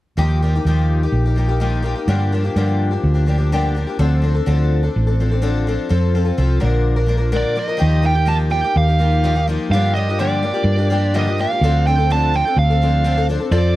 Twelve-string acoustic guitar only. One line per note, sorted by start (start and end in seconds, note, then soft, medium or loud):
0.17 0.42 D#3 medium
0.17 0.41 F3 medium
0.17 0.41 A#3 medium
0.17 0.42 D#4 medium
0.17 0.42 G4 medium
0.42 0.54 F3 medium
0.42 0.54 A#3 medium
0.42 0.55 D#4 medium
0.42 0.54 G4 medium
0.55 0.66 A#3 soft
0.55 0.66 D#4 soft
0.55 0.67 G4 soft
0.66 1.02 D#3 medium
0.66 1.02 F3 medium
0.66 1.02 A#3 medium
0.66 1.02 D#4 medium
0.66 1.02 G4 medium
1.03 1.27 A#3 soft
1.03 1.26 D#4 soft
1.03 1.25 G4 medium
1.26 1.36 A#3 soft
1.26 1.37 D#4 soft
1.26 1.38 G4 soft
1.36 1.49 F3 medium
1.36 1.49 A#3 medium
1.36 1.48 D#4 medium
1.36 1.47 G4 medium
1.48 1.60 A#3 soft
1.48 1.60 D#4 soft
1.48 1.60 G4 soft
1.60 1.85 D#3 medium
1.60 1.81 F3 medium
1.60 1.82 A#3 medium
1.60 1.83 D#4 medium
1.60 1.84 G4 medium
1.82 1.96 F3 medium
1.82 1.96 A#3 medium
1.82 1.96 D#4 medium
1.82 1.94 G4 medium
1.95 2.07 A#3 soft
1.95 2.08 D#4 soft
1.95 2.08 G4 soft
2.08 2.32 G2 medium
2.08 2.32 D3 medium
2.08 2.31 F3 medium
2.08 2.31 A#3 medium
2.08 2.33 D4 medium
2.08 2.33 G4 medium
2.32 2.44 F3 medium
2.32 2.43 A#3 medium
2.32 2.44 D4 medium
2.32 2.43 G4 medium
2.44 2.55 F3 soft
2.44 2.56 A#3 soft
2.44 2.56 D4 soft
2.44 2.56 G4 soft
2.56 2.92 G2 medium
2.56 2.92 D3 medium
2.56 2.92 F3 medium
2.56 2.92 A#3 medium
2.56 2.91 D4 medium
2.56 2.90 G4 medium
2.91 3.14 F3 soft
2.91 3.15 A#3 soft
2.91 3.14 D4 soft
2.91 3.13 G4 soft
3.14 3.25 F3 soft
3.14 3.26 A#3 soft
3.14 3.27 D4 medium
3.14 3.27 G4 soft
3.26 3.39 F3 medium
3.26 3.39 A#3 medium
3.26 3.38 D4 medium
3.26 3.37 G4 medium
3.38 3.51 F3 soft
3.38 3.52 A#3 soft
3.38 3.51 D4 soft
3.38 3.51 G4 soft
3.52 3.76 G2 medium
3.52 3.76 D3 medium
3.52 3.73 F3 medium
3.52 3.75 A#3 medium
3.52 3.75 D4 medium
3.52 3.76 G4 medium
3.75 3.87 F3 medium
3.75 3.88 A#3 medium
3.75 3.87 D4 medium
3.75 3.86 G4 medium
3.87 3.98 F3 soft
3.87 3.99 A#3 soft
3.87 3.98 D4 soft
3.87 3.99 G4 soft
3.99 4.23 D3 medium
3.99 4.21 F3 medium
3.99 4.22 C4 medium
3.99 4.22 D4 medium
3.99 4.23 A4 medium
4.22 4.35 F3 medium
4.22 4.36 C4 medium
4.22 4.35 D4 medium
4.22 4.33 A4 medium
4.35 4.45 C4 soft
4.35 4.46 D4 soft
4.35 4.46 A4 soft
4.46 4.83 D3 medium
4.46 4.83 F3 medium
4.46 4.83 C4 medium
4.46 4.82 D4 medium
4.46 4.82 A4 medium
4.83 5.07 C4 soft
4.83 5.07 D4 soft
4.83 5.06 A4 medium
5.07 5.19 C4 soft
5.07 5.19 D4 soft
5.07 5.19 A4 soft
5.20 5.32 F3 medium
5.20 5.32 C4 medium
5.20 5.31 D4 medium
5.20 5.30 A4 medium
5.31 5.41 C4 soft
5.31 5.41 D4 soft
5.31 5.42 A4 soft
5.42 5.66 D3 medium
5.42 5.66 F3 medium
5.42 5.66 C4 medium
5.42 5.67 D4 medium
5.42 5.67 A4 medium
5.67 5.88 F3 medium
5.67 5.89 C4 medium
5.67 5.90 D4 medium
5.67 5.89 A4 medium
5.89 6.13 F3 medium
5.89 6.14 C4 medium
5.89 6.14 F4 medium
5.89 6.14 A4 medium
6.15 6.27 F3 medium
6.15 6.26 C4 medium
6.15 6.24 F4 medium
6.15 6.23 A4 medium
6.24 6.37 C4 soft
6.24 6.37 F4 soft
6.24 6.37 A4 medium
6.38 6.59 F3 medium
6.38 6.60 C4 medium
6.38 6.61 F4 medium
6.38 6.61 A4 medium
6.60 6.97 A#2 medium
6.60 6.97 D3 medium
6.60 6.97 F3 medium
6.60 6.96 A#3 medium
6.60 6.95 D4 medium
6.60 6.95 A#4 medium
6.96 7.05 F3 soft
6.96 7.07 A#3 soft
6.96 7.08 D4 medium
6.96 7.08 A#4 soft
7.06 7.19 F3 medium
7.06 7.17 A#3 medium
7.06 7.17 D4 medium
7.06 7.16 A#4 medium
7.17 7.31 F3 soft
7.17 7.32 A#3 soft
7.17 7.31 D4 soft
7.17 7.31 A#4 soft
7.32 7.57 A#2 medium
7.32 7.57 D3 medium
7.32 7.54 F3 medium
7.32 7.55 A#3 medium
7.32 7.56 D4 medium
7.32 7.56 A#4 medium
7.55 7.68 F3 medium
7.55 7.68 A#3 medium
7.55 7.68 D4 medium
7.55 7.66 A#4 medium
7.68 7.77 F3 soft
7.68 7.77 A#3 soft
7.68 7.78 D4 soft
7.68 7.79 A#4 soft
7.77 8.03 D#3 medium
7.77 8.01 F3 medium
7.77 8.02 A#3 medium
7.77 8.02 D#4 medium
7.77 8.03 G4 medium
8.02 8.16 F3 medium
8.02 8.16 A#3 medium
8.02 8.14 D#4 medium
8.02 8.13 G4 medium
8.14 8.25 A#3 soft
8.14 8.26 D#4 soft
8.14 8.26 G4 soft
8.26 8.51 D#3 medium
8.26 8.49 F3 medium
8.26 8.49 A#3 medium
8.26 8.50 D#4 medium
8.26 8.51 G4 medium
8.50 8.63 F3 soft
8.50 8.63 A#3 medium
8.50 8.63 D#4 medium
8.50 8.63 G4 medium
8.64 8.89 A#3 soft
8.64 8.88 D#4 soft
8.64 8.87 G4 medium
8.88 8.98 A#3 soft
8.88 8.99 D#4 soft
8.88 9.00 G4 soft
8.99 9.23 F3 medium
8.99 9.23 A#3 medium
8.99 9.24 D#4 medium
8.99 9.24 G4 medium
9.24 9.36 D#3 medium
9.24 9.36 F3 medium
9.24 9.36 A#3 medium
9.24 9.36 D#4 medium
9.24 9.35 G4 medium
9.36 9.48 A#3 soft
9.36 9.48 D#4 medium
9.36 9.48 G4 medium
9.48 9.72 F3 medium
9.48 9.72 A#3 medium
9.48 9.72 D#4 medium
9.48 9.72 G4 medium
9.73 9.96 G2 medium
9.73 9.96 D3 medium
9.73 9.94 F3 medium
9.73 9.95 A#3 medium
9.73 9.95 D4 medium
9.73 9.96 G4 medium
9.95 10.07 F3 medium
9.95 10.08 A#3 medium
9.95 10.08 D4 medium
9.95 10.08 G4 medium
10.09 10.18 F3 soft
10.09 10.18 A#3 soft
10.09 10.19 D4 soft
10.09 10.20 G4 medium
10.19 10.43 G2 medium
10.19 10.43 D3 medium
10.19 10.41 F3 medium
10.19 10.42 A#3 medium
10.19 10.43 D4 medium
10.19 10.43 G4 medium
10.43 10.54 F3 medium
10.43 10.54 A#3 medium
10.43 10.53 D4 medium
10.43 10.52 G4 medium
10.54 10.79 F3 soft
10.54 10.78 A#3 soft
10.54 10.77 D4 soft
10.54 10.76 G4 soft
10.77 10.89 F3 soft
10.77 10.89 A#3 soft
10.77 10.90 D4 medium
10.77 10.90 G4 medium
10.90 11.13 F3 medium
10.90 11.13 A#3 medium
10.90 11.14 D4 medium
10.90 11.14 G4 medium
11.14 11.26 G2 medium
11.14 11.26 D3 medium
11.14 11.26 F3 medium
11.14 11.26 A#3 medium
11.14 11.26 D4 medium
11.14 11.26 G4 medium
11.27 11.37 F3 soft
11.27 11.38 A#3 soft
11.27 11.38 D4 soft
11.27 11.39 G4 medium
11.38 11.50 F3 medium
11.38 11.51 A#3 medium
11.38 11.51 D4 medium
11.38 11.50 G4 medium
11.52 11.63 F3 soft
11.52 11.63 A#3 soft
11.52 11.63 D4 soft
11.52 11.63 G4 soft
11.63 11.87 D3 medium
11.63 11.85 F3 medium
11.63 11.86 C4 medium
11.63 11.87 D4 medium
11.63 11.87 A4 medium
11.87 11.98 F3 medium
11.87 11.98 C4 medium
11.87 11.98 D4 medium
11.87 11.97 A4 medium
11.98 12.09 C4 soft
11.98 12.10 D4 soft
11.98 12.10 A4 soft
12.10 12.34 D3 medium
12.10 12.32 F3 medium
12.10 12.33 C4 medium
12.10 12.33 D4 medium
12.10 12.34 A4 medium
12.34 12.45 F3 medium
12.34 12.45 C4 medium
12.34 12.45 D4 medium
12.34 12.45 A4 medium
12.47 12.70 C4 soft
12.47 12.70 D4 soft
12.47 12.69 A4 soft
12.70 12.82 C4 soft
12.70 12.82 D4 soft
12.70 12.81 A4 soft
12.82 13.03 F3 medium
12.82 13.04 C4 medium
12.82 13.05 D4 medium
12.82 13.05 A4 medium
13.04 13.16 D3 medium
13.04 13.16 F3 medium
13.04 13.17 C4 medium
13.04 13.17 D4 medium
13.04 13.16 A4 medium
13.18 13.28 C4 soft
13.18 13.29 D4 soft
13.18 13.29 A4 medium
13.29 13.41 F3 medium
13.29 13.41 C4 medium
13.29 13.40 D4 medium
13.29 13.39 A4 medium
13.40 13.51 C4 soft
13.40 13.52 D4 soft
13.40 13.51 A4 soft
13.51 13.75 F3 medium
13.51 13.75 C4 medium
13.51 13.76 F4 medium
13.51 13.76 A4 medium